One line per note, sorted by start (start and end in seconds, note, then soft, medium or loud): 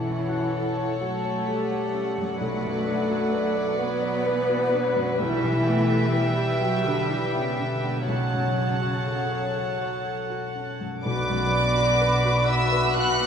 0.00 2.37 B1 soft
0.00 0.19 F#2 soft
0.00 2.40 B2 soft
0.00 0.95 E3 medium
0.00 3.71 A3 soft
0.00 1.03 E4 medium
0.00 2.36 A4 soft
0.00 0.75 C#5 soft
0.00 2.36 C#5 soft
0.00 5.15 F#5 soft
0.05 1.93 C#4 soft
0.05 0.43 C#4 soft
0.28 0.66 F#4 soft
0.28 4.18 F#5 soft
0.52 0.99 A4 soft
0.52 0.90 A4 soft
0.76 1.22 C#5 soft
0.76 1.14 C#5 soft
0.99 1.47 F#3 soft
0.99 2.36 A3 medium
0.99 1.49 F#4 medium
0.99 1.45 A4 soft
0.99 1.38 F#5 soft
1.23 2.44 C#5 soft
1.23 1.61 C#5 soft
1.47 2.40 G3 soft
1.47 2.40 G4 medium
1.47 2.44 A4 soft
1.47 1.85 A4 soft
1.72 2.08 F#5 soft
1.94 2.31 C#4 soft
1.94 2.45 C#4 soft
2.17 2.41 F#2 soft
2.17 2.63 F#3 soft
2.39 5.16 B1 soft
2.39 5.20 B2 medium
2.39 3.76 F#3 medium
2.39 3.77 A3 medium
2.39 3.80 A4 medium
2.39 8.04 B4 medium
2.39 5.20 D5 medium
2.64 3.01 F#2 soft
2.64 4.95 F#3 soft
2.87 4.72 D4 soft
2.87 3.24 D4 soft
3.10 3.47 F#4 soft
3.10 4.49 F#4 soft
3.32 3.70 B4 soft
3.32 3.80 B4 soft
3.55 3.93 D5 soft
3.55 4.03 D5 soft
3.78 4.25 F#3 medium
3.78 5.19 B3 medium
3.78 5.19 B4 medium
3.78 4.26 B4 soft
3.78 4.17 F#5 soft
4.02 4.40 D5 soft
4.02 5.24 D5 soft
4.25 4.73 E3 medium
4.25 4.63 B4 soft
4.25 6.12 B4 soft
4.49 4.87 F#4 soft
4.49 5.24 F#4 soft
4.73 5.20 F#3 medium
4.73 5.11 D4 soft
4.73 5.24 D4 soft
4.96 5.19 F#2 soft
4.96 5.24 F#3 soft
5.18 8.04 B1 medium
5.18 8.06 B2 medium
5.18 6.61 E3 medium
5.18 5.66 G3 medium
5.18 6.31 E4 medium
5.18 8.08 E5 medium
5.18 8.03 G5 medium
5.44 5.81 B2 soft
5.44 7.82 G3 soft
5.66 6.14 A3 medium
5.66 6.04 B3 soft
5.66 7.57 B3 soft
5.90 6.28 G4 soft
5.90 6.36 G4 soft
6.13 8.04 G3 medium
6.13 6.51 B4 soft
6.13 6.59 B4 soft
6.37 6.83 G4 soft
6.37 6.75 G4 soft
6.60 6.84 F#3 medium
6.60 6.90 F#4 medium
6.60 7.08 B4 medium
6.60 7.00 G5 soft
6.84 7.09 D3 medium
6.84 7.32 G4 soft
6.84 7.24 B4 soft
6.88 7.12 D4 medium
7.09 7.34 E3 medium
7.09 7.37 E4 medium
7.09 7.49 G4 soft
7.09 8.12 B4 soft
7.33 7.58 C#3 medium
7.33 7.74 B3 soft
7.33 7.61 C#4 medium
7.33 8.12 G4 soft
7.58 7.98 B2 soft
7.58 8.08 D3 medium
7.58 8.12 B3 soft
7.58 8.07 D4 medium
7.83 8.12 G3 soft
7.83 8.08 B3 soft
8.05 11.01 B1 soft
8.05 11.05 B2 soft
8.05 9.53 C#3 soft
8.05 10.27 F#3 soft
8.05 9.53 C#4 medium
8.05 10.81 C#5 soft
8.05 10.81 F#5 medium
8.05 10.83 A5 soft
8.32 8.73 F#2 soft
8.32 10.80 F#3 soft
8.56 10.55 C#4 soft
8.56 8.97 C#4 soft
8.82 9.21 F#4 soft
8.82 10.30 F#4 soft
9.06 9.46 A4 soft
9.06 9.55 A4 soft
9.31 9.80 C#5 soft
9.31 9.71 C#5 soft
9.56 10.05 A4 soft
9.56 9.96 F#5 soft
9.81 11.09 C#5 soft
9.81 10.21 C#5 soft
10.05 10.45 A4 soft
10.05 11.09 A4 soft
10.30 10.71 F#4 soft
10.30 11.77 F#4 soft
10.55 10.95 C#4 soft
10.55 11.09 C#4 soft
10.80 11.05 F#2 soft
10.80 11.29 F#3 soft
11.03 13.27 B1 medium
11.03 13.27 B2 medium
11.03 13.27 B3 medium
11.03 13.27 D4 medium
11.03 13.27 F#4 medium
11.03 13.27 B4 medium
11.03 12.45 D5 medium
11.03 13.27 B5 medium
11.03 12.45 D6 medium
11.30 11.68 F#2 soft
11.30 13.27 F#3 soft
11.54 11.92 B3 soft
11.54 13.27 B3 soft
11.76 12.15 F#4 soft
11.76 12.25 F#4 soft
12.01 12.40 B4 soft
12.01 12.49 B4 soft
12.25 12.64 F#4 soft
12.25 12.73 F#4 medium
12.48 12.97 B4 medium
12.48 12.96 E5 medium
12.48 12.87 F#5 medium
12.48 12.96 E6 medium
12.72 13.20 F#4 medium
12.72 13.10 B4 medium
12.95 13.27 F#4 medium
12.95 13.27 B4 medium
12.95 13.27 F#5 medium
12.95 13.27 F#6 loud
13.19 13.27 B3 medium
13.19 13.27 F#4 medium